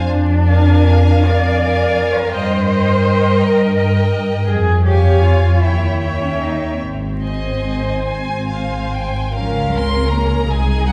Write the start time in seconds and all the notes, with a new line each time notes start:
Already playing: D4
0.10 F2
0.46 A#4 F5 G#5
1.25 F2 D5
1.60 A#4 F5 G#5
2.16 A#4
2.31 G2 A#4 C5 D#5 G5
2.67 A#4 D#5 G5
3.40 G2 A#4
3.78 A#4 D#5 G5
4.49 F2 G#4
4.87 G4 C#5 F5 G#5
5.23 F4
5.62 D#2 E4 C#5 E5 G5
6.00 C#5 E5 G5
6.22 C#4
6.42 D#4
6.82 G#1 C4
7.23 C5 D#5 G#5
8.06 G#1 G#5
8.50 C5 F5 G#5
8.93 G5
9.35 C#2 F3 C#4 A#4 F5
9.73 C4 C6
10.11 A#3 A#5
10.50 C2 G#3 D#4 G#4 G#5
10.87 F#3 F#5